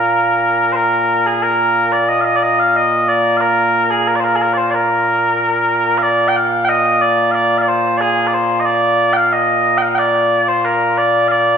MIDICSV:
0, 0, Header, 1, 2, 480
1, 0, Start_track
1, 0, Key_signature, -2, "major"
1, 0, Tempo, 659341
1, 553, Time_signature, 2, 2, 24, 8
1, 8427, End_track
2, 0, Start_track
2, 0, Title_t, "Bagpipes"
2, 0, Program_c, 0, 109
2, 0, Note_on_c, 0, 46, 89
2, 0, Note_on_c, 0, 58, 89
2, 0, Note_on_c, 0, 70, 80
2, 528, Note_off_c, 0, 70, 0
2, 528, Note_on_c, 0, 72, 82
2, 552, Note_off_c, 0, 72, 0
2, 552, Note_on_c, 0, 70, 82
2, 921, Note_off_c, 0, 70, 0
2, 921, Note_on_c, 0, 68, 82
2, 1038, Note_off_c, 0, 68, 0
2, 1038, Note_on_c, 0, 70, 94
2, 1400, Note_off_c, 0, 70, 0
2, 1400, Note_on_c, 0, 74, 86
2, 1520, Note_off_c, 0, 74, 0
2, 1520, Note_on_c, 0, 75, 105
2, 1606, Note_off_c, 0, 75, 0
2, 1606, Note_on_c, 0, 77, 69
2, 1631, Note_off_c, 0, 77, 0
2, 1631, Note_on_c, 0, 75, 110
2, 1719, Note_off_c, 0, 75, 0
2, 1719, Note_on_c, 0, 74, 79
2, 1768, Note_off_c, 0, 74, 0
2, 1768, Note_on_c, 0, 75, 105
2, 1887, Note_off_c, 0, 75, 0
2, 1887, Note_on_c, 0, 77, 102
2, 2009, Note_off_c, 0, 77, 0
2, 2009, Note_on_c, 0, 75, 100
2, 2246, Note_off_c, 0, 75, 0
2, 2246, Note_on_c, 0, 74, 93
2, 2452, Note_off_c, 0, 74, 0
2, 2452, Note_on_c, 0, 77, 92
2, 2480, Note_off_c, 0, 77, 0
2, 2480, Note_on_c, 0, 70, 92
2, 2843, Note_off_c, 0, 70, 0
2, 2843, Note_on_c, 0, 68, 84
2, 2965, Note_off_c, 0, 68, 0
2, 2965, Note_on_c, 0, 70, 92
2, 3025, Note_off_c, 0, 70, 0
2, 3025, Note_on_c, 0, 74, 62
2, 3056, Note_off_c, 0, 74, 0
2, 3056, Note_on_c, 0, 72, 62
2, 3088, Note_off_c, 0, 72, 0
2, 3088, Note_on_c, 0, 70, 96
2, 3171, Note_off_c, 0, 70, 0
2, 3171, Note_on_c, 0, 68, 66
2, 3215, Note_off_c, 0, 68, 0
2, 3215, Note_on_c, 0, 70, 84
2, 3301, Note_off_c, 0, 70, 0
2, 3301, Note_on_c, 0, 74, 84
2, 3329, Note_off_c, 0, 74, 0
2, 3329, Note_on_c, 0, 72, 84
2, 3425, Note_off_c, 0, 72, 0
2, 3425, Note_on_c, 0, 74, 86
2, 3453, Note_off_c, 0, 74, 0
2, 3453, Note_on_c, 0, 70, 86
2, 4354, Note_off_c, 0, 70, 0
2, 4354, Note_on_c, 0, 77, 103
2, 4386, Note_off_c, 0, 77, 0
2, 4386, Note_on_c, 0, 74, 103
2, 4572, Note_off_c, 0, 74, 0
2, 4572, Note_on_c, 0, 79, 85
2, 4633, Note_off_c, 0, 79, 0
2, 4633, Note_on_c, 0, 77, 95
2, 4839, Note_off_c, 0, 77, 0
2, 4839, Note_on_c, 0, 79, 110
2, 4867, Note_off_c, 0, 79, 0
2, 4867, Note_on_c, 0, 75, 110
2, 5107, Note_off_c, 0, 75, 0
2, 5107, Note_on_c, 0, 74, 91
2, 5322, Note_off_c, 0, 74, 0
2, 5322, Note_on_c, 0, 77, 105
2, 5346, Note_off_c, 0, 77, 0
2, 5346, Note_on_c, 0, 74, 105
2, 5517, Note_off_c, 0, 74, 0
2, 5517, Note_on_c, 0, 77, 74
2, 5545, Note_off_c, 0, 77, 0
2, 5545, Note_on_c, 0, 74, 74
2, 5591, Note_off_c, 0, 74, 0
2, 5591, Note_on_c, 0, 72, 92
2, 5804, Note_off_c, 0, 72, 0
2, 5804, Note_on_c, 0, 74, 92
2, 5829, Note_off_c, 0, 74, 0
2, 5829, Note_on_c, 0, 68, 92
2, 6021, Note_off_c, 0, 68, 0
2, 6021, Note_on_c, 0, 74, 75
2, 6069, Note_off_c, 0, 74, 0
2, 6069, Note_on_c, 0, 72, 83
2, 6259, Note_off_c, 0, 72, 0
2, 6259, Note_on_c, 0, 75, 75
2, 6302, Note_off_c, 0, 75, 0
2, 6302, Note_on_c, 0, 74, 105
2, 6647, Note_off_c, 0, 74, 0
2, 6647, Note_on_c, 0, 79, 108
2, 6672, Note_off_c, 0, 79, 0
2, 6672, Note_on_c, 0, 77, 108
2, 6788, Note_off_c, 0, 77, 0
2, 6788, Note_on_c, 0, 75, 103
2, 7117, Note_off_c, 0, 75, 0
2, 7117, Note_on_c, 0, 79, 93
2, 7149, Note_off_c, 0, 79, 0
2, 7149, Note_on_c, 0, 77, 93
2, 7243, Note_off_c, 0, 77, 0
2, 7243, Note_on_c, 0, 79, 96
2, 7268, Note_off_c, 0, 79, 0
2, 7268, Note_on_c, 0, 74, 96
2, 7631, Note_off_c, 0, 74, 0
2, 7631, Note_on_c, 0, 72, 92
2, 7753, Note_off_c, 0, 72, 0
2, 7753, Note_on_c, 0, 70, 94
2, 7992, Note_off_c, 0, 70, 0
2, 7992, Note_on_c, 0, 74, 91
2, 8212, Note_off_c, 0, 74, 0
2, 8212, Note_on_c, 0, 77, 105
2, 8236, Note_off_c, 0, 77, 0
2, 8236, Note_on_c, 0, 74, 105
2, 8427, Note_off_c, 0, 46, 0
2, 8427, Note_off_c, 0, 58, 0
2, 8427, Note_off_c, 0, 74, 0
2, 8427, End_track
0, 0, End_of_file